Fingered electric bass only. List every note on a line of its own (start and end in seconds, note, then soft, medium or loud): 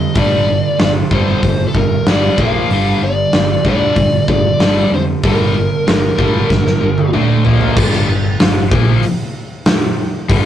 0.15 0.60 G1 medium
0.80 1.02 G1 medium
1.11 1.34 G1 medium
1.43 1.65 G1 medium
1.75 1.97 G1 medium
2.07 2.29 G1 medium
2.38 2.60 A#1 medium
2.70 2.92 G1 medium
3.01 3.24 G1 medium
3.33 3.56 G1 medium
3.64 3.87 D2 medium
3.96 4.19 G1 medium
4.28 4.50 G1 medium
4.60 4.82 G1 medium
4.91 5.14 F2 medium
5.23 5.68 G1 medium
5.87 6.09 G1 medium
6.19 6.41 G1 medium
6.50 6.73 G1 medium
6.81 7.16 G1 medium
7.14 7.36 D2 medium
7.45 7.68 A#1 medium
7.77 8.06 G1 medium
8.09 8.38 G1 medium
8.40 8.69 G1 medium
8.72 9.01 A#1 medium
10.30 10.46 G1 medium